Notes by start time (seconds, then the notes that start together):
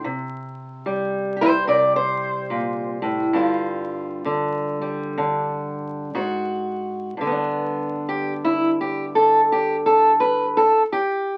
0.04 C3
0.86 G3
1.36 G4
1.41 E4 C5
1.67 C3 A#4 D5
1.96 C5
2.50 A#2
3.02 A2
3.33 G2 D3 G3 F4
4.25 D3
4.81 G3
5.18 D3
6.15 G#2 F#4
7.17 G2 D3
7.27 B3
7.31 D4
8.09 G4
8.45 E4
8.81 G4
9.15 A4
9.52 G4
9.86 A4
10.20 B4
10.57 A4
10.92 G4